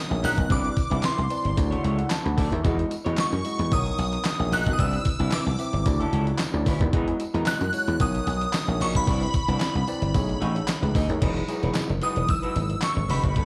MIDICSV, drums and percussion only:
0, 0, Header, 1, 2, 480
1, 0, Start_track
1, 0, Tempo, 535714
1, 451, Time_signature, 4, 2, 24, 8
1, 12051, End_track
2, 0, Start_track
2, 0, Title_t, "Drums"
2, 213, Note_on_c, 9, 54, 54
2, 214, Note_on_c, 9, 46, 70
2, 302, Note_off_c, 9, 54, 0
2, 304, Note_off_c, 9, 46, 0
2, 339, Note_on_c, 9, 36, 95
2, 340, Note_on_c, 9, 42, 58
2, 429, Note_off_c, 9, 36, 0
2, 429, Note_off_c, 9, 42, 0
2, 449, Note_on_c, 9, 36, 99
2, 451, Note_on_c, 9, 42, 84
2, 454, Note_on_c, 9, 54, 38
2, 538, Note_off_c, 9, 36, 0
2, 540, Note_off_c, 9, 42, 0
2, 543, Note_off_c, 9, 54, 0
2, 579, Note_on_c, 9, 42, 37
2, 669, Note_off_c, 9, 42, 0
2, 686, Note_on_c, 9, 42, 82
2, 689, Note_on_c, 9, 36, 89
2, 691, Note_on_c, 9, 54, 46
2, 776, Note_off_c, 9, 42, 0
2, 778, Note_off_c, 9, 36, 0
2, 781, Note_off_c, 9, 54, 0
2, 817, Note_on_c, 9, 42, 49
2, 907, Note_off_c, 9, 42, 0
2, 924, Note_on_c, 9, 39, 86
2, 925, Note_on_c, 9, 54, 85
2, 931, Note_on_c, 9, 38, 104
2, 934, Note_on_c, 9, 42, 86
2, 1013, Note_off_c, 9, 39, 0
2, 1014, Note_off_c, 9, 54, 0
2, 1021, Note_off_c, 9, 38, 0
2, 1024, Note_off_c, 9, 42, 0
2, 1059, Note_on_c, 9, 42, 35
2, 1149, Note_off_c, 9, 42, 0
2, 1168, Note_on_c, 9, 42, 69
2, 1169, Note_on_c, 9, 54, 55
2, 1257, Note_off_c, 9, 42, 0
2, 1259, Note_off_c, 9, 54, 0
2, 1298, Note_on_c, 9, 42, 52
2, 1387, Note_off_c, 9, 42, 0
2, 1410, Note_on_c, 9, 54, 48
2, 1411, Note_on_c, 9, 36, 104
2, 1413, Note_on_c, 9, 42, 93
2, 1500, Note_off_c, 9, 36, 0
2, 1500, Note_off_c, 9, 54, 0
2, 1502, Note_off_c, 9, 42, 0
2, 1544, Note_on_c, 9, 42, 35
2, 1634, Note_off_c, 9, 42, 0
2, 1653, Note_on_c, 9, 42, 74
2, 1742, Note_off_c, 9, 42, 0
2, 1780, Note_on_c, 9, 42, 49
2, 1869, Note_off_c, 9, 42, 0
2, 1885, Note_on_c, 9, 39, 94
2, 1887, Note_on_c, 9, 42, 94
2, 1888, Note_on_c, 9, 54, 93
2, 1892, Note_on_c, 9, 38, 121
2, 1974, Note_off_c, 9, 39, 0
2, 1977, Note_off_c, 9, 42, 0
2, 1977, Note_off_c, 9, 54, 0
2, 1982, Note_off_c, 9, 38, 0
2, 2022, Note_on_c, 9, 42, 38
2, 2112, Note_off_c, 9, 42, 0
2, 2130, Note_on_c, 9, 36, 105
2, 2132, Note_on_c, 9, 54, 52
2, 2134, Note_on_c, 9, 46, 67
2, 2220, Note_off_c, 9, 36, 0
2, 2221, Note_off_c, 9, 54, 0
2, 2223, Note_off_c, 9, 46, 0
2, 2261, Note_on_c, 9, 42, 54
2, 2350, Note_off_c, 9, 42, 0
2, 2370, Note_on_c, 9, 42, 83
2, 2371, Note_on_c, 9, 36, 102
2, 2377, Note_on_c, 9, 54, 36
2, 2460, Note_off_c, 9, 36, 0
2, 2460, Note_off_c, 9, 42, 0
2, 2467, Note_off_c, 9, 54, 0
2, 2501, Note_on_c, 9, 42, 37
2, 2591, Note_off_c, 9, 42, 0
2, 2608, Note_on_c, 9, 42, 81
2, 2615, Note_on_c, 9, 54, 47
2, 2698, Note_off_c, 9, 42, 0
2, 2705, Note_off_c, 9, 54, 0
2, 2741, Note_on_c, 9, 42, 49
2, 2830, Note_off_c, 9, 42, 0
2, 2845, Note_on_c, 9, 39, 92
2, 2845, Note_on_c, 9, 54, 88
2, 2852, Note_on_c, 9, 38, 111
2, 2855, Note_on_c, 9, 42, 87
2, 2934, Note_off_c, 9, 39, 0
2, 2934, Note_off_c, 9, 54, 0
2, 2942, Note_off_c, 9, 38, 0
2, 2945, Note_off_c, 9, 42, 0
2, 2979, Note_on_c, 9, 42, 35
2, 3068, Note_off_c, 9, 42, 0
2, 3089, Note_on_c, 9, 42, 67
2, 3092, Note_on_c, 9, 54, 62
2, 3178, Note_off_c, 9, 42, 0
2, 3182, Note_off_c, 9, 54, 0
2, 3218, Note_on_c, 9, 42, 50
2, 3308, Note_off_c, 9, 42, 0
2, 3330, Note_on_c, 9, 42, 96
2, 3331, Note_on_c, 9, 36, 110
2, 3332, Note_on_c, 9, 54, 47
2, 3420, Note_off_c, 9, 42, 0
2, 3421, Note_off_c, 9, 36, 0
2, 3421, Note_off_c, 9, 54, 0
2, 3463, Note_on_c, 9, 42, 36
2, 3553, Note_off_c, 9, 42, 0
2, 3566, Note_on_c, 9, 54, 36
2, 3573, Note_on_c, 9, 42, 77
2, 3656, Note_off_c, 9, 54, 0
2, 3662, Note_off_c, 9, 42, 0
2, 3699, Note_on_c, 9, 42, 50
2, 3789, Note_off_c, 9, 42, 0
2, 3805, Note_on_c, 9, 39, 97
2, 3807, Note_on_c, 9, 54, 93
2, 3808, Note_on_c, 9, 42, 94
2, 3813, Note_on_c, 9, 38, 112
2, 3895, Note_off_c, 9, 39, 0
2, 3897, Note_off_c, 9, 54, 0
2, 3898, Note_off_c, 9, 42, 0
2, 3902, Note_off_c, 9, 38, 0
2, 4051, Note_on_c, 9, 54, 53
2, 4055, Note_on_c, 9, 46, 71
2, 4140, Note_off_c, 9, 54, 0
2, 4145, Note_off_c, 9, 46, 0
2, 4180, Note_on_c, 9, 36, 94
2, 4181, Note_on_c, 9, 42, 59
2, 4270, Note_off_c, 9, 36, 0
2, 4270, Note_off_c, 9, 42, 0
2, 4290, Note_on_c, 9, 36, 102
2, 4290, Note_on_c, 9, 42, 85
2, 4380, Note_off_c, 9, 36, 0
2, 4380, Note_off_c, 9, 42, 0
2, 4420, Note_on_c, 9, 42, 37
2, 4510, Note_off_c, 9, 42, 0
2, 4526, Note_on_c, 9, 42, 85
2, 4529, Note_on_c, 9, 36, 95
2, 4533, Note_on_c, 9, 54, 46
2, 4615, Note_off_c, 9, 42, 0
2, 4619, Note_off_c, 9, 36, 0
2, 4623, Note_off_c, 9, 54, 0
2, 4656, Note_on_c, 9, 42, 49
2, 4746, Note_off_c, 9, 42, 0
2, 4763, Note_on_c, 9, 39, 91
2, 4767, Note_on_c, 9, 54, 96
2, 4771, Note_on_c, 9, 38, 109
2, 4774, Note_on_c, 9, 42, 92
2, 4853, Note_off_c, 9, 39, 0
2, 4857, Note_off_c, 9, 54, 0
2, 4860, Note_off_c, 9, 38, 0
2, 4863, Note_off_c, 9, 42, 0
2, 4897, Note_on_c, 9, 42, 37
2, 4987, Note_off_c, 9, 42, 0
2, 5006, Note_on_c, 9, 42, 64
2, 5014, Note_on_c, 9, 54, 61
2, 5095, Note_off_c, 9, 42, 0
2, 5104, Note_off_c, 9, 54, 0
2, 5135, Note_on_c, 9, 42, 46
2, 5225, Note_off_c, 9, 42, 0
2, 5248, Note_on_c, 9, 42, 95
2, 5250, Note_on_c, 9, 36, 116
2, 5254, Note_on_c, 9, 54, 48
2, 5338, Note_off_c, 9, 42, 0
2, 5339, Note_off_c, 9, 36, 0
2, 5343, Note_off_c, 9, 54, 0
2, 5382, Note_on_c, 9, 42, 37
2, 5471, Note_off_c, 9, 42, 0
2, 5492, Note_on_c, 9, 42, 77
2, 5582, Note_off_c, 9, 42, 0
2, 5618, Note_on_c, 9, 42, 49
2, 5708, Note_off_c, 9, 42, 0
2, 5721, Note_on_c, 9, 39, 96
2, 5724, Note_on_c, 9, 42, 97
2, 5729, Note_on_c, 9, 38, 118
2, 5731, Note_on_c, 9, 54, 92
2, 5811, Note_off_c, 9, 39, 0
2, 5814, Note_off_c, 9, 42, 0
2, 5819, Note_off_c, 9, 38, 0
2, 5821, Note_off_c, 9, 54, 0
2, 5970, Note_on_c, 9, 36, 103
2, 5971, Note_on_c, 9, 54, 56
2, 5972, Note_on_c, 9, 46, 69
2, 6059, Note_off_c, 9, 36, 0
2, 6060, Note_off_c, 9, 54, 0
2, 6062, Note_off_c, 9, 46, 0
2, 6100, Note_on_c, 9, 36, 87
2, 6100, Note_on_c, 9, 42, 58
2, 6189, Note_off_c, 9, 36, 0
2, 6189, Note_off_c, 9, 42, 0
2, 6211, Note_on_c, 9, 36, 100
2, 6211, Note_on_c, 9, 42, 89
2, 6300, Note_off_c, 9, 36, 0
2, 6301, Note_off_c, 9, 42, 0
2, 6341, Note_on_c, 9, 42, 37
2, 6430, Note_off_c, 9, 42, 0
2, 6449, Note_on_c, 9, 42, 84
2, 6452, Note_on_c, 9, 54, 46
2, 6538, Note_off_c, 9, 42, 0
2, 6542, Note_off_c, 9, 54, 0
2, 6581, Note_on_c, 9, 42, 52
2, 6671, Note_off_c, 9, 42, 0
2, 6684, Note_on_c, 9, 54, 91
2, 6686, Note_on_c, 9, 39, 92
2, 6693, Note_on_c, 9, 38, 116
2, 6696, Note_on_c, 9, 42, 89
2, 6774, Note_off_c, 9, 54, 0
2, 6775, Note_off_c, 9, 39, 0
2, 6783, Note_off_c, 9, 38, 0
2, 6786, Note_off_c, 9, 42, 0
2, 6817, Note_on_c, 9, 42, 35
2, 6907, Note_off_c, 9, 42, 0
2, 6925, Note_on_c, 9, 42, 65
2, 6932, Note_on_c, 9, 54, 63
2, 7014, Note_off_c, 9, 42, 0
2, 7022, Note_off_c, 9, 54, 0
2, 7056, Note_on_c, 9, 42, 47
2, 7146, Note_off_c, 9, 42, 0
2, 7167, Note_on_c, 9, 42, 103
2, 7169, Note_on_c, 9, 36, 105
2, 7172, Note_on_c, 9, 54, 48
2, 7257, Note_off_c, 9, 42, 0
2, 7259, Note_off_c, 9, 36, 0
2, 7261, Note_off_c, 9, 54, 0
2, 7300, Note_on_c, 9, 42, 36
2, 7389, Note_off_c, 9, 42, 0
2, 7409, Note_on_c, 9, 42, 83
2, 7411, Note_on_c, 9, 54, 35
2, 7499, Note_off_c, 9, 42, 0
2, 7501, Note_off_c, 9, 54, 0
2, 7539, Note_on_c, 9, 42, 52
2, 7628, Note_off_c, 9, 42, 0
2, 7645, Note_on_c, 9, 39, 94
2, 7648, Note_on_c, 9, 42, 96
2, 7648, Note_on_c, 9, 54, 94
2, 7653, Note_on_c, 9, 38, 119
2, 7735, Note_off_c, 9, 39, 0
2, 7738, Note_off_c, 9, 42, 0
2, 7738, Note_off_c, 9, 54, 0
2, 7742, Note_off_c, 9, 38, 0
2, 7889, Note_on_c, 9, 54, 56
2, 7895, Note_on_c, 9, 46, 68
2, 7978, Note_off_c, 9, 54, 0
2, 7985, Note_off_c, 9, 46, 0
2, 8020, Note_on_c, 9, 36, 91
2, 8020, Note_on_c, 9, 42, 59
2, 8109, Note_off_c, 9, 36, 0
2, 8110, Note_off_c, 9, 42, 0
2, 8130, Note_on_c, 9, 36, 102
2, 8130, Note_on_c, 9, 42, 83
2, 8136, Note_on_c, 9, 54, 38
2, 8219, Note_off_c, 9, 36, 0
2, 8220, Note_off_c, 9, 42, 0
2, 8225, Note_off_c, 9, 54, 0
2, 8260, Note_on_c, 9, 42, 37
2, 8350, Note_off_c, 9, 42, 0
2, 8367, Note_on_c, 9, 42, 83
2, 8370, Note_on_c, 9, 36, 93
2, 8374, Note_on_c, 9, 54, 45
2, 8457, Note_off_c, 9, 42, 0
2, 8459, Note_off_c, 9, 36, 0
2, 8464, Note_off_c, 9, 54, 0
2, 8499, Note_on_c, 9, 42, 51
2, 8589, Note_off_c, 9, 42, 0
2, 8605, Note_on_c, 9, 39, 88
2, 8610, Note_on_c, 9, 54, 93
2, 8613, Note_on_c, 9, 38, 113
2, 8616, Note_on_c, 9, 42, 86
2, 8695, Note_off_c, 9, 39, 0
2, 8699, Note_off_c, 9, 54, 0
2, 8703, Note_off_c, 9, 38, 0
2, 8706, Note_off_c, 9, 42, 0
2, 8740, Note_on_c, 9, 42, 36
2, 8829, Note_off_c, 9, 42, 0
2, 8848, Note_on_c, 9, 42, 67
2, 8853, Note_on_c, 9, 54, 60
2, 8938, Note_off_c, 9, 42, 0
2, 8943, Note_off_c, 9, 54, 0
2, 8977, Note_on_c, 9, 42, 50
2, 9067, Note_off_c, 9, 42, 0
2, 9089, Note_on_c, 9, 42, 97
2, 9090, Note_on_c, 9, 36, 105
2, 9094, Note_on_c, 9, 54, 49
2, 9179, Note_off_c, 9, 42, 0
2, 9180, Note_off_c, 9, 36, 0
2, 9184, Note_off_c, 9, 54, 0
2, 9223, Note_on_c, 9, 42, 35
2, 9313, Note_off_c, 9, 42, 0
2, 9334, Note_on_c, 9, 42, 75
2, 9424, Note_off_c, 9, 42, 0
2, 9463, Note_on_c, 9, 42, 51
2, 9552, Note_off_c, 9, 42, 0
2, 9569, Note_on_c, 9, 39, 97
2, 9569, Note_on_c, 9, 54, 91
2, 9571, Note_on_c, 9, 42, 94
2, 9576, Note_on_c, 9, 38, 116
2, 9658, Note_off_c, 9, 39, 0
2, 9659, Note_off_c, 9, 54, 0
2, 9661, Note_off_c, 9, 42, 0
2, 9666, Note_off_c, 9, 38, 0
2, 9705, Note_on_c, 9, 42, 36
2, 9795, Note_off_c, 9, 42, 0
2, 9811, Note_on_c, 9, 36, 97
2, 9814, Note_on_c, 9, 54, 55
2, 9817, Note_on_c, 9, 46, 69
2, 9901, Note_off_c, 9, 36, 0
2, 9903, Note_off_c, 9, 54, 0
2, 9906, Note_off_c, 9, 46, 0
2, 9942, Note_on_c, 9, 42, 57
2, 10032, Note_off_c, 9, 42, 0
2, 10051, Note_on_c, 9, 36, 99
2, 10052, Note_on_c, 9, 42, 85
2, 10052, Note_on_c, 9, 49, 87
2, 10141, Note_off_c, 9, 36, 0
2, 10142, Note_off_c, 9, 42, 0
2, 10142, Note_off_c, 9, 49, 0
2, 10182, Note_on_c, 9, 42, 33
2, 10272, Note_off_c, 9, 42, 0
2, 10290, Note_on_c, 9, 42, 72
2, 10294, Note_on_c, 9, 54, 45
2, 10380, Note_off_c, 9, 42, 0
2, 10384, Note_off_c, 9, 54, 0
2, 10420, Note_on_c, 9, 42, 49
2, 10510, Note_off_c, 9, 42, 0
2, 10524, Note_on_c, 9, 39, 84
2, 10526, Note_on_c, 9, 54, 86
2, 10532, Note_on_c, 9, 38, 107
2, 10535, Note_on_c, 9, 42, 84
2, 10614, Note_off_c, 9, 39, 0
2, 10615, Note_off_c, 9, 54, 0
2, 10622, Note_off_c, 9, 38, 0
2, 10625, Note_off_c, 9, 42, 0
2, 10658, Note_on_c, 9, 42, 32
2, 10748, Note_off_c, 9, 42, 0
2, 10766, Note_on_c, 9, 42, 69
2, 10774, Note_on_c, 9, 54, 55
2, 10855, Note_off_c, 9, 42, 0
2, 10863, Note_off_c, 9, 54, 0
2, 10896, Note_on_c, 9, 42, 47
2, 10986, Note_off_c, 9, 42, 0
2, 11008, Note_on_c, 9, 42, 97
2, 11010, Note_on_c, 9, 36, 111
2, 11013, Note_on_c, 9, 54, 46
2, 11097, Note_off_c, 9, 42, 0
2, 11099, Note_off_c, 9, 36, 0
2, 11102, Note_off_c, 9, 54, 0
2, 11140, Note_on_c, 9, 42, 37
2, 11230, Note_off_c, 9, 42, 0
2, 11251, Note_on_c, 9, 42, 78
2, 11254, Note_on_c, 9, 54, 31
2, 11341, Note_off_c, 9, 42, 0
2, 11343, Note_off_c, 9, 54, 0
2, 11376, Note_on_c, 9, 42, 50
2, 11466, Note_off_c, 9, 42, 0
2, 11484, Note_on_c, 9, 39, 91
2, 11487, Note_on_c, 9, 42, 93
2, 11492, Note_on_c, 9, 38, 118
2, 11492, Note_on_c, 9, 54, 88
2, 11574, Note_off_c, 9, 39, 0
2, 11577, Note_off_c, 9, 42, 0
2, 11581, Note_off_c, 9, 38, 0
2, 11582, Note_off_c, 9, 54, 0
2, 11731, Note_on_c, 9, 54, 52
2, 11735, Note_on_c, 9, 46, 67
2, 11820, Note_off_c, 9, 54, 0
2, 11825, Note_off_c, 9, 46, 0
2, 11859, Note_on_c, 9, 36, 86
2, 11859, Note_on_c, 9, 42, 58
2, 11949, Note_off_c, 9, 36, 0
2, 11949, Note_off_c, 9, 42, 0
2, 11970, Note_on_c, 9, 36, 94
2, 11970, Note_on_c, 9, 42, 81
2, 12051, Note_off_c, 9, 36, 0
2, 12051, Note_off_c, 9, 42, 0
2, 12051, End_track
0, 0, End_of_file